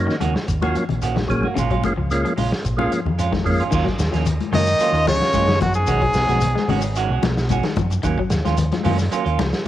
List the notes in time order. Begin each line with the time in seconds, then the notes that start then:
Already playing: F#3 A#3 C#4 D#4
0.07 D#3, muted clean electric guitar stroke, snare
0.20 D#2 C#3 D#3 A#3 C#4 F#4, closed hi-hat, high conga, shekere
0.35 muted clean electric guitar stroke, snare
0.48 D#2, muted clean electric guitar stroke, kick, closed hi-hat, shekere
0.62 D#3 F#3 A#3 C#4 F4 F#4, muted clean electric guitar stroke, closed hi-hat, high conga
0.75 F3, muted fingered electric bass stroke, muted clean electric guitar stroke, closed hi-hat, shekere
0.89 A#1, closed hi-hat, low conga
1.02 D#3 A#3 C#4 F#4, closed hi-hat, shekere
1.16 D#3, muted clean electric guitar stroke, snare, high conga, low conga
1.28 A#1 F3 F#3 A#3 C#4 G#4, muted clean electric guitar stroke, kick, closed hi-hat, shekere
1.43 A#3 F#4, high conga
1.55 A#1 C#3 G#3 C#4 F4, kick, closed hi-hat, low conga, shekere
1.70 F#3 G#3 C#4 F4, kick, closed hi-hat
1.83 G#3 A#3 C#4 F4, muted clean electric guitar stroke, kick, closed hi-hat, high conga, shekere
1.97 C#2 F3, muted clean electric guitar stroke
2.11 G#3 A#3 C#4 F4, closed hi-hat, shekere
2.24 F3, muted clean electric guitar stroke, closed hi-hat
2.36 A#1 C#3 G#3 C#4 F4, open hi-hat, high conga, shekere
2.52 muted clean electric guitar stroke, snare
2.64 A#1, muted clean electric guitar stroke, kick, closed hi-hat, shekere
2.77 G#3 A#3 C#4 F4, muted clean electric guitar stroke, high conga
2.91 F3, muted fingered electric bass stroke, muted clean electric guitar stroke, closed hi-hat, shekere
3.05 F2, low conga
3.18 G#3 C#4 F4, closed hi-hat, shekere
3.32 D#3, kick, snare, high conga
3.44 F2 F3 G#3 A#3 C#4 F4, muted clean electric guitar stroke, kick, open hi-hat, shekere
3.60 C#4 F4, closed hi-hat
3.71 D#2 D#3 F#3 A#3 C#4 F4, kick, crash, shekere
3.84 F#3, muted clean electric guitar stroke, kick, snare
3.99 D#2, muted clean electric guitar stroke, snare, closed hi-hat, shekere
4.12 D#2 F3 A#3 C#4, muted clean electric guitar stroke, snare, closed hi-hat, shekere
4.26 muted clean electric guitar stroke, closed hi-hat, low conga, shekere
4.41 closed hi-hat, high conga
4.52 F#2 C#3 D#3 F#3 A#3 C#4 D#5, muted clean electric guitar stroke, open hi-hat, high conga, low conga, shekere
4.56 D#3
4.67 muted clean electric guitar stroke, shekere
4.79 F#3 A#3 C#4 F4, muted fingered electric bass stroke, closed hi-hat, shekere
4.92 D#2 C#4 F4, muted clean electric guitar stroke, closed hi-hat
5.05 C#2 C#3 F3 C#5, snare, closed hi-hat, high conga, low conga
5.11 C#3
5.21 snare, shekere
5.33 F#2 F#3 A#3 C#4 F4, kick, closed hi-hat, high conga, shekere
5.48 D#3, muted clean electric guitar stroke, snare, closed hi-hat
5.60 F#2 F3 F#4, muted clean electric guitar stroke, kick, closed hi-hat, high conga, low conga, shekere
5.64 F#2
5.74 G#2 G#4, muted clean electric guitar stroke, shekere
5.79 B2
5.87 B1 D#3 G#3 C#4 F#4, kick, closed hi-hat, shekere
6.02 F#3, muted clean electric guitar stroke, kick, closed hi-hat
6.14 B1, muted clean electric guitar stroke, snare, closed hi-hat, shekere
6.28 B1 F3 G#3 C#4 F#4, snare, closed hi-hat, high conga, shekere
6.41 muted clean electric guitar stroke, closed hi-hat, low conga, shekere
6.56 G#3, snare
6.68 G#1 C#3 D#3 G#3 C#4 F#4, open hi-hat, high conga, low conga, shekere
6.81 muted clean electric guitar stroke, shekere
6.96 D#3 G#3 C#4 F#4, closed hi-hat, shekere
7.10 B1 G#3 C#4 F#4
7.22 B1 F3, muted clean electric guitar stroke, snare, closed hi-hat, high conga
7.38 snare, shekere
7.49 G#3 C#4 F#4, muted clean electric guitar stroke, kick, closed hi-hat, high conga, shekere
7.63 D#3, muted clean electric guitar stroke, muted fingered electric bass stroke, snare, closed hi-hat
7.76 F#2 F3, muted clean electric guitar stroke, kick, closed hi-hat, high conga, low conga, shekere
7.90 muted clean electric guitar stroke, closed hi-hat, shekere
8.03 D#2 D#3 F#3 A#3 C#4, muted clean electric guitar stroke, kick, closed hi-hat, shekere
8.18 F#3, muted clean electric guitar stroke, kick
8.30 D#2, muted clean electric guitar stroke, snare, closed hi-hat, shekere
8.45 D#2 F3 A#3 C#4 F4, snare, closed hi-hat, high conga, shekere
8.57 muted clean electric guitar stroke, closed hi-hat, low conga, shekere
8.72 F3, snare, closed hi-hat, high conga
8.83 F#2 F#3 A#3 C#4 F4, open hi-hat, high conga, low conga, shekere
8.98 muted clean electric guitar stroke, snare, shekere
9.11 F#3 A#3 C#4 F4, muted fingered electric bass stroke, closed hi-hat, shekere
9.25 D#2 A#3 C#4 F4, closed hi-hat
9.38 C#2 F3, muted clean electric guitar stroke, snare, closed hi-hat, high conga
9.53 snare, shekere